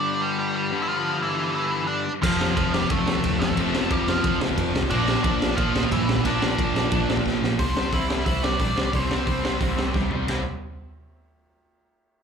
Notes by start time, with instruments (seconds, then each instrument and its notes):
Already playing: distorted electric guitar G2 D3 G3, lead electric guitar D4 D5
0.21 lead electric guitar G3 G4
0.39 lead electric guitar G3 G4
0.56 lead electric guitar G3 G4
0.71 distorted electric guitar G2 D3 G3
0.82 lead electric guitar E4
0.89 lead electric guitar F3 F4
1.22 lead electric guitar E3 E4
1.55 lead electric guitar E3 E4
1.87 lead electric guitar D4 D5
2.22 picked electric bass F1, overdriven electric guitar F2 C3 F3, lead electric guitar F3 F4, kick, crash
2.41 snare
2.57 picked electric bass F1, lead electric guitar F3 F4, kick, ride
2.73 picked electric bass F1, lead electric guitar G3 G4, snare
2.88 picked electric bass F1, overdriven electric guitar F2 C3 F3, lead electric guitar A3 A4, kick, ride
3.07 picked electric bass F1, snare
3.15 kick
3.24 picked electric bass D2, kick, ride
3.40 picked electric bass F1, lead electric guitar A3 A4, snare
3.49 kick
3.55 picked electric bass F1, overdriven electric guitar F2 C3 F3, kick, ride
3.74 picked electric bass F1, snare
3.90 picked electric bass F1, lead electric guitar G3 G4, kick, ride
4.07 picked electric bass F2, lead electric guitar F3 F4, snare
4.23 picked electric bass F1, overdriven electric guitar F2 C3 F3, kick, ride
4.41 picked electric bass F1, snare
4.49 kick
4.58 picked electric bass F1, kick, ride
4.75 picked electric bass C2, snare
4.83 kick
4.89 picked electric bass A#1, overdriven electric guitar A#2 F3 A#3, lead electric guitar D4 D5, kick, ride
5.08 snare
5.24 picked electric bass A#1, lead electric guitar D4 D5, kick, ride
5.42 picked electric bass A#1, snare
5.56 picked electric bass A#1, overdriven electric guitar A#2 F3 A#3, lead electric guitar F3 F4, kick, ride
5.74 picked electric bass A#1, snare
5.83 kick
5.91 picked electric bass G2, lead electric guitar E3 E4, kick, ride
6.08 picked electric bass A#1, snare
6.17 kick
6.23 picked electric bass A#1, overdriven electric guitar A#2 F3 A#3, lead electric guitar D4 D5, kick, ride
6.42 picked electric bass A#1, snare
6.58 picked electric bass A#1, kick, ride
6.75 picked electric bass A#2, snare
6.90 picked electric bass A#1, overdriven electric guitar A#2 F3 A#3, kick, ride
7.09 picked electric bass A#1, snare
7.17 kick
7.25 picked electric bass A#1, kick, snare
7.42 picked electric bass A#1, snare
7.58 picked electric bass C2, overdriven electric guitar C3 G3 C4, lead electric guitar C4 C5, kick, open hi-hat
7.75 picked electric bass C2, overdriven electric guitar C3 G3 C4, snare
7.92 picked electric bass C2, overdriven electric guitar C3 G3 C4, lead electric guitar E4 E5, kick, open hi-hat
8.09 overdriven electric guitar C3 G3 C4, snare
8.26 picked electric bass C2, overdriven electric guitar C3 G3 C4, lead electric guitar E4 E5, kick, open hi-hat
8.43 overdriven electric guitar C3 G3 C4, lead electric guitar D4 D5, snare
8.59 picked electric bass A#1, overdriven electric guitar C3 G3 C4, lead electric guitar D4 D5, kick, open hi-hat
8.76 picked electric bass C2, overdriven electric guitar C3 G3 C4, snare
8.93 picked electric bass C2, overdriven electric guitar C3 G3 C4, lead electric guitar C4 C5, kick, open hi-hat
9.09 picked electric bass C2, overdriven electric guitar C3 G3 C4, snare
9.26 picked electric bass C2, overdriven electric guitar C3 G3 C4, kick, open hi-hat
9.43 overdriven electric guitar C3 G3 C4, snare
9.60 picked electric bass C2, overdriven electric guitar C3 G3 C4, kick, open hi-hat
9.77 overdriven electric guitar C3 G3 C4, snare
9.94 picked electric bass C2, overdriven electric guitar C3 G3 C4, kick, snare
10.10 picked electric bass C2, overdriven electric guitar C3 G3 C4, floor tom
10.27 picked electric bass C2, overdriven electric guitar C3 G3 C4, snare, crash